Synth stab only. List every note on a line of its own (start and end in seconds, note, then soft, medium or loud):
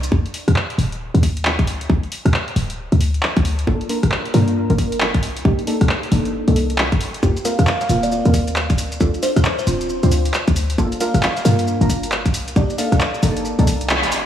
3.67 3.76 A#3 loud
3.67 3.76 D4 medium
3.67 3.76 F4 medium
3.67 3.76 A4 loud
3.89 3.98 A#3 medium
3.89 3.98 D4 medium
3.89 3.98 F4 medium
3.89 3.98 A#4 loud
4.34 4.67 A#3 medium
4.34 4.67 D4 medium
4.34 4.67 F4 medium
4.34 4.67 A#4 loud
4.70 4.78 A#3 medium
4.70 4.78 D4 medium
4.70 4.78 F4 medium
4.70 4.78 A#4 loud
5.45 5.54 A#3 loud
5.45 5.54 D4 medium
5.45 5.54 D#4 medium
5.45 5.54 G4 loud
5.67 5.76 A#3 medium
5.67 5.76 D4 medium
5.67 5.76 D#4 medium
5.67 5.76 A4 medium
6.12 6.44 A#3 medium
6.12 6.45 D4 medium
6.12 6.44 D#4 medium
6.12 6.44 A4 medium
6.48 6.56 A#3 medium
6.48 6.56 D4 medium
6.48 6.56 D#4 medium
6.48 6.56 A4 loud
7.23 7.31 A#3 loud
7.23 7.31 C4 medium
7.23 7.31 F4 medium
7.23 7.31 G4 loud
7.45 7.53 A#3 medium
7.45 7.53 C4 medium
7.45 7.53 F4 medium
7.45 7.54 A#4 medium
7.89 8.22 A#3 medium
7.89 8.22 C4 medium
7.89 8.22 F4 medium
7.89 8.22 A#4 medium
8.26 8.34 A#3 medium
8.26 8.34 C4 medium
8.26 8.34 F4 medium
8.26 8.34 A#4 loud
9.00 9.09 C4 loud
9.00 9.09 D4 medium
9.00 9.09 F4 medium
9.00 9.09 A4 loud
9.23 9.31 C4 medium
9.23 9.31 D4 medium
9.23 9.31 F4 medium
9.23 9.31 C5 medium
9.67 10.00 C4 medium
9.67 10.00 D4 medium
9.67 10.00 F4 medium
9.67 10.00 C5 medium
10.03 10.12 C4 medium
10.03 10.12 D4 medium
10.03 10.12 F4 medium
10.03 10.12 C5 loud
10.78 10.87 A#3 loud
10.78 10.87 D4 medium
10.78 10.87 F4 medium
10.78 10.87 A4 loud
11.01 11.09 A#3 medium
11.01 11.09 D4 medium
11.01 11.09 F4 medium
11.01 11.09 A#4 loud
11.45 11.78 A#3 medium
11.45 11.78 D4 medium
11.45 11.78 F4 medium
11.45 11.78 A#4 loud
11.81 11.89 A#3 medium
11.81 11.89 D4 medium
11.81 11.89 F4 medium
11.81 11.89 A#4 loud
12.56 12.65 A#3 loud
12.56 12.65 D4 medium
12.56 12.65 D#4 medium
12.56 12.65 G4 loud
12.78 12.87 A#3 medium
12.78 12.87 D4 medium
12.78 12.87 D#4 medium
12.78 12.87 A4 medium
13.23 13.56 A#3 medium
13.23 13.56 D4 medium
13.23 13.56 D#4 medium
13.23 13.56 A4 medium
13.59 13.67 A#3 medium
13.59 13.67 D4 medium
13.59 13.67 D#4 medium
13.59 13.67 A4 loud